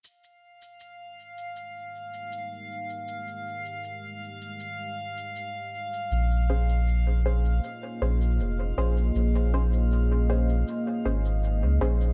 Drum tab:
SH |xx-xx--xx--xx--x|xx-xx--xx--xx--x|xx-xx--xx--xx--x|xx-xx--xx--xx--x|